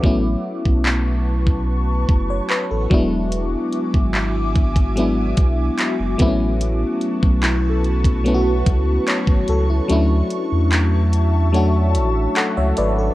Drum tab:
HH |----------------|x-x-x-xxx-x-x-x-|x-x-x-xxx-x-x-x-|x-x-x-x-x-x-x-x-|
CP |----x-------x---|----x-------x---|----x-------x---|----x-------x---|
BD |o--o---o--o---o-|---o--oo--o---o-|---o---o--o--o--|----------------|